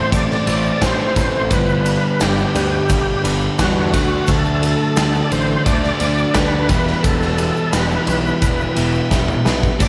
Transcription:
Already playing: A2 E3 A3 E4 C5
0.11 A1 C4 E4 A4 D5, kick, ride, shaker
0.30 snare
0.46 A1 A2 E3 A3 C4 E4 A4 C5, ride, shaker
0.65 shaker
0.80 A1 A2 E3 A3 C4 E4 A4 C5, kick, snare, ride, shaker
1.16 A1 C4 E4 A4 B4, kick, ride, shaker
1.49 G1 G2 D3 G3 B3 D4 G4 B4, kick, ride, shaker
1.69 shaker
1.84 B3 D4 G4 B4, ride, shaker
2.19 G1 B3 D4 G4 A4, snare, ride, shaker
2.23 G4
2.38 shaker
2.54 D2 B3 D4 G4 B4, ride, shaker
2.88 G1 B3 D4 G4 B4, kick, ride, shaker
3.23 G1 G2 D3 G3 B3 D4 G4 B4, ride, shaker
3.41 shaker
3.58 E2 G2 D3 G3 B3 D4 F#4 G4 B4, kick, snare, ride, shaker
3.91 D2 D3 F#3 A3 D4 F#4 A4, kick, ride, shaker
3.96 D4
4.27 D2 A4, kick, ride, shaker
4.45 shaker
4.61 A3 D4 F#4 A4, ride, shaker
4.95 D2 A3 D4 F#4 A4, snare, ride, shaker
5.14 shaker
5.24 D5
5.32 A1 A3 D4 F#4 A4 C5, ride, shaker
5.65 D2 D3 A3 D4 F#4 A4 D5, kick, ride, shaker
5.83 snare
6.00 D2 D3 A3 D4 F#4 A4, ride, shaker
6.18 shaker
6.34 D2 A3 D4 F#4 A4 B4, kick, snare, ride, shaker
6.68 E1 E2 B2 E3 G3 B3 E4 G4 B4, kick, ride, shaker
6.87 snare
7.03 E1 A4, kick, ride, shaker
7.21 snare, shaker
7.38 B3 E4 G4 B4, ride, shaker
7.56 shaker
7.71 E1 B3 E4 G4 B4, snare, ride, shaker
7.91 shaker
8.06 B1 B3 E4 G4 B4, ride, shaker
8.26 shaker
8.41 E1 E2 B2 E3 B3 E4 G4 B4, kick, ride, shaker
8.60 shaker
8.75 E1 E2 B2 E3 B3 E4 G4 B4, ride, shaker
8.95 shaker
9.10 E1 B3 E4 G4 B4, kick, snare, shaker
9.28 mid tom, shaker
9.44 B1 B3 E4 G4 B4, snare, shaker
9.63 kick, shaker
9.79 A1 A2 E3 A3 C4 E4 A4 C5 D5, kick, crash, shaker

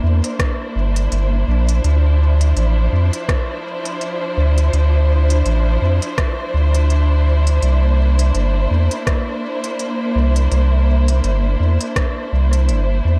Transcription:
Already playing: A#3 D4 E4 C5
0.03 E2
0.24 closed hi-hat
0.39 kick, cross-stick, closed hi-hat
0.76 G1
0.96 closed hi-hat
1.12 G1, closed hi-hat
1.48 A#1
1.69 closed hi-hat
1.84 D2 F3, closed hi-hat
2.41 closed hi-hat
2.56 A1, closed hi-hat
2.93 F2
3.13 closed hi-hat
3.29 kick, cross-stick, closed hi-hat
3.85 closed hi-hat
4.01 closed hi-hat
4.37 D2
4.58 closed hi-hat
4.73 D2, closed hi-hat
5.30 closed hi-hat
5.46 A1, closed hi-hat
5.82 F2
6.02 closed hi-hat
6.18 kick, cross-stick, closed hi-hat
6.54 D2
6.74 closed hi-hat
6.90 closed hi-hat
7.47 closed hi-hat
7.62 C2 A#3, closed hi-hat
8.19 closed hi-hat
8.35 G1, closed hi-hat
8.71 E2
8.91 closed hi-hat
9.07 kick, cross-stick, closed hi-hat
9.64 closed hi-hat
9.79 closed hi-hat
10.15 C2
10.36 closed hi-hat
10.51 C2, closed hi-hat
11.08 closed hi-hat
11.24 G1, closed hi-hat
11.60 E2
11.81 closed hi-hat
11.96 kick, cross-stick, closed hi-hat
12.33 C2
12.53 closed hi-hat
12.69 G1, closed hi-hat
13.05 E2

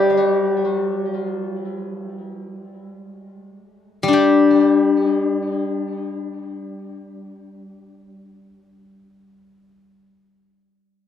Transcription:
Already playing: G3 G4 C5 D5 E5
4.03 G3
4.08 D4
4.13 G4

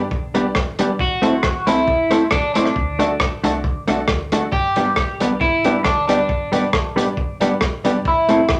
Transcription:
Already playing: D4
0.11 B1, kick
0.34 G3 B3 D4 G4 B4 D5, closed hi-hat
0.55 E1, kick, cross-stick
0.79 G3 B3 D4 G4 B4 D5, closed hi-hat
0.99 A1 F#4, kick
1.22 A3 C4 E4 A4 C5, closed hi-hat
1.43 B1, kick, cross-stick
1.66 C2 A3 C4 E4 A4 C5, closed hi-hat
1.88 E1, kick
2.10 A3 C4 E4 A4 C5, closed hi-hat
2.31 A1 D4, muted hollow-body jazz guitar stroke, kick, cross-stick
2.54 A3 C4 D4 E4 A4 C5, closed hi-hat
2.65 cross-stick
2.76 D2, kick
2.99 A3 D4 F#4 A4 D5, closed hi-hat
3.20 A1, kick, cross-stick
3.43 C2 A3 D4 F#4 A4 D5, closed hi-hat
3.64 D2, kick
3.87 B1 A3 D4 F#4 A4 D5, closed hi-hat
4.08 D2, kick, cross-stick
4.32 A3 D4 F#4 A4 D5, closed hi-hat
4.52 G1 G4, kick
4.76 G3 B3 D4 G4 B4 D5, closed hi-hat
4.96 kick, cross-stick
5.20 B1 G3 B3 D4 G4 B4 D5, closed hi-hat
5.41 G1 E4, kick
5.64 G3 B3 D4 G4 B4 D5, closed hi-hat
5.84 D2 D4, muted hollow-body jazz guitar stroke, kick, cross-stick
6.08 G3 B3 D4 G4 B4 D5, closed hi-hat
6.29 G1, kick
6.52 G3 B3 D4 G4 B4 D5, closed hi-hat
6.73 B1, kick, cross-stick
6.96 A1 G3 B3 D4 G4 B4 D5, closed hi-hat
7.17 G1, kick
7.40 G3 B3 D4 G4 B4 D5, closed hi-hat
7.61 E1, kick, cross-stick
7.84 G3 B3 D4 G4 B4 D5, closed hi-hat
8.05 A1 E4, kick
8.29 A3 C4 E4 A4 C5, closed hi-hat
8.49 E2, kick, cross-stick

